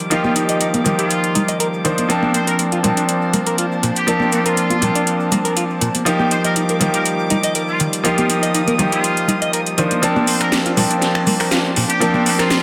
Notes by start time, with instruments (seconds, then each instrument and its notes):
Already playing: string section D#3 G3 D6
0.10 grand piano F3 A#3 D#4 G4, clean electric guitar D#4, trumpet section F4, closed hi-hat, cabasa
0.24 trumpet section F4, clean electric guitar G4, high conga, cabasa
0.36 clean electric guitar D#4, closed hi-hat, cabasa
0.49 clean electric guitar D#5, closed hi-hat, cabasa
0.61 clean electric guitar D#4, closed hi-hat, cabasa
0.74 clean electric guitar A#4, closed hi-hat, high conga, cabasa
0.84 clean electric guitar D#3, grand piano F3 A#3 D#4 G4, closed hi-hat, low conga, cabasa
0.99 trumpet section F4, clean electric guitar G4, closed hi-hat, cabasa
1.10 closed hi-hat, cabasa
1.24 closed hi-hat, cabasa
1.35 clean electric guitar D#4, closed hi-hat, low conga, cabasa
1.48 clean electric guitar D#5, closed hi-hat, cabasa
1.60 clean electric guitar A#4, closed hi-hat, cabasa
1.74 cabasa
1.84 clean electric guitar D#3, grand piano F3 A#3 D4 D#4 C5, closed hi-hat, cabasa
1.98 closed hi-hat, high conga, cabasa
2.09 grand piano F3 A#3 C4 D4 A5, string section A#3 D4 C5 A5, clean electric guitar A#3, closed hi-hat, cabasa
2.23 clean electric guitar D4, high conga, cabasa
2.34 clean electric guitar A#3, trumpet section C5, closed hi-hat, cabasa
2.47 clean electric guitar A#4, trumpet section A#4, closed hi-hat, cabasa
2.59 clean electric guitar A#3, closed hi-hat, cabasa
2.72 clean electric guitar F4, closed hi-hat, cabasa
2.83 clean electric guitar A#2, grand piano F3 A#3 C4 D4 A5, closed hi-hat, low conga, cabasa
2.97 clean electric guitar D4, closed hi-hat, cabasa
3.09 closed hi-hat, cabasa
3.22 cabasa
3.33 clean electric guitar A#3, closed hi-hat, low conga, cabasa
3.47 clean electric guitar A#4, closed hi-hat, cabasa
3.58 clean electric guitar F4, closed hi-hat, cabasa
3.72 cabasa
3.83 clean electric guitar A#2, closed hi-hat, cabasa
3.95 trumpet section G4, closed hi-hat, cabasa
4.07 grand piano F3 A#3 C4 D4 A5, clean electric guitar A#3, closed hi-hat, cabasa
4.20 clean electric guitar D4, high conga, cabasa
4.32 clean electric guitar A#3, trumpet section G4, closed hi-hat, cabasa
4.46 trumpet section F4, clean electric guitar A#4, closed hi-hat, cabasa
4.57 clean electric guitar A#3, closed hi-hat, cabasa
4.70 clean electric guitar F4, closed hi-hat, high conga, cabasa
4.81 clean electric guitar A#2, grand piano F3 A#3 C4 D4 A5, closed hi-hat, low conga, cabasa
4.95 clean electric guitar D4, closed hi-hat
5.07 closed hi-hat, cabasa
5.20 cabasa
5.32 clean electric guitar A#3, closed hi-hat, low conga, cabasa
5.45 clean electric guitar A#4, closed hi-hat, cabasa
5.56 clean electric guitar F4, closed hi-hat, cabasa
5.70 cabasa
5.81 clean electric guitar A#2, closed hi-hat, cabasa
5.95 closed hi-hat, high conga, cabasa
6.05 string section D#3 G3 D6, grand piano F3 A#3 D#4 G4, clean electric guitar D#4, closed hi-hat, cabasa
6.19 clean electric guitar G4, high conga, cabasa
6.31 clean electric guitar D#4, trumpet section C5, closed hi-hat, cabasa
6.44 trumpet section A#4, clean electric guitar D#5, closed hi-hat, cabasa
6.56 clean electric guitar D#4, closed hi-hat, cabasa
6.69 clean electric guitar A#4, closed hi-hat, cabasa
6.80 clean electric guitar D#3, grand piano F3 A#3 D#4 G4, closed hi-hat, low conga, cabasa
6.94 clean electric guitar G4, trumpet section A#4, closed hi-hat, cabasa
7.05 closed hi-hat, cabasa
7.19 cabasa
7.30 clean electric guitar D#4, closed hi-hat, low conga, cabasa
7.43 clean electric guitar D#5, closed hi-hat, cabasa
7.55 clean electric guitar A#4, closed hi-hat, cabasa
7.68 trumpet section F4, cabasa
7.80 clean electric guitar D#3, closed hi-hat, cabasa
7.93 closed hi-hat, cabasa
8.04 grand piano F3 A#3 D#4 G4, clean electric guitar D#4, trumpet section F4, string section D#6, closed hi-hat, cabasa
8.18 trumpet section F4, clean electric guitar G4, closed hi-hat, high conga, cabasa
8.30 clean electric guitar D#4, closed hi-hat, cabasa
8.43 clean electric guitar D#5, closed hi-hat, cabasa
8.54 clean electric guitar D#4, closed hi-hat, cabasa
8.67 clean electric guitar A#4, closed hi-hat, high conga, cabasa
8.78 clean electric guitar D#3, grand piano F3 A#3 D#4 G4, closed hi-hat, low conga, cabasa
8.92 trumpet section F4, clean electric guitar G4, closed hi-hat, cabasa
9.04 closed hi-hat, cabasa
9.16 closed hi-hat, cabasa
9.28 clean electric guitar D#4, closed hi-hat, low conga, cabasa
9.41 clean electric guitar D#5, closed hi-hat, cabasa
9.53 clean electric guitar A#4, closed hi-hat, cabasa
9.66 closed hi-hat, cabasa
9.78 clean electric guitar D#3, grand piano F3 A#3 D4 D#4 C5, closed hi-hat, cabasa
9.91 closed hi-hat, high conga, cabasa
10.02 grand piano F3 A#3 C4 D4 A5, string section A#3 D4 C5 A5, clean electric guitar A#3, closed hi-hat, cabasa
10.16 clean electric guitar D4, high conga, cabasa
10.27 clean electric guitar A#3, trumpet section C5, open hi-hat, cabasa
10.41 clean electric guitar A#4, trumpet section A#4, finger snap, closed hi-hat, cabasa
10.52 clean electric guitar A#3, snare, closed hi-hat, cabasa
10.66 clean electric guitar F4, closed hi-hat, cabasa
10.77 clean electric guitar A#2, grand piano F3 A#3 C4 D4 A5, open hi-hat, low conga, cabasa
10.90 clean electric guitar D4, closed hi-hat, cabasa
11.02 snare, closed hi-hat, cabasa
11.15 finger snap, cabasa
11.27 clean electric guitar A#3, open hi-hat, low conga, cabasa
11.40 clean electric guitar A#4, finger snap, open hi-hat, cabasa
11.51 clean electric guitar F4, snare, closed hi-hat, cabasa
11.65 cabasa
11.76 clean electric guitar A#2, open hi-hat, cabasa
11.90 trumpet section G4, closed hi-hat
12.00 grand piano F3 A#3 C4 D4 A5, clean electric guitar A#3, closed hi-hat, cabasa
12.14 clean electric guitar D4, high conga, cabasa
12.26 clean electric guitar A#3, trumpet section G4, open hi-hat, cabasa
12.39 trumpet section F4, clean electric guitar A#4, finger snap, snare, closed hi-hat, cabasa
12.50 clean electric guitar A#3, snare, closed hi-hat, cabasa